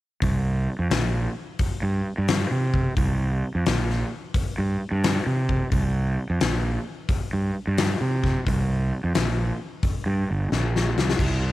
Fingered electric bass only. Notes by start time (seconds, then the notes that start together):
0.23 C2
0.79 F2
0.90 A#1
1.83 G2
2.18 G2
2.51 C3
2.97 C2
3.55 F2
3.67 A#1
4.58 G2
4.91 G2
5.26 C3
5.72 C2
6.30 F2
6.41 A#1
7.33 G2
7.67 G2
8.01 C3
8.47 C2
9.04 F2
9.15 A#1
10.06 G2
10.31 G1
10.52 A#1
10.97 C2
11.19 C2